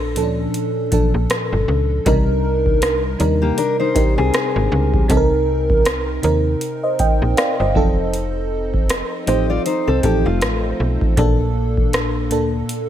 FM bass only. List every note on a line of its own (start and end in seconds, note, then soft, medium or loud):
0.00 0.18 A#1 loud
0.16 0.48 D2 medium
0.92 1.01 A#1 soft
1.14 1.28 A#1 medium
1.53 1.66 G1 medium
1.68 2.00 C#2 loud
2.06 3.16 C2 loud
3.20 3.52 D#2 medium
3.96 4.05 C2 soft
4.18 4.31 C2 medium
4.56 4.69 G#1 loud
4.72 5.04 C#2 loud
5.10 6.20 C2 loud
6.24 6.56 D#2 medium
7.00 7.08 A#1 soft
7.22 7.35 A#1 medium
7.60 7.77 G1 medium
7.76 9.03 F1 loud
9.28 9.59 A1 medium
9.88 10.01 C2 medium
10.04 10.22 A1 medium
10.26 10.44 F1 medium
10.42 10.74 A1 medium
10.80 10.98 B1 medium
11.17 12.33 A#1 loud
12.32 12.63 D2 loud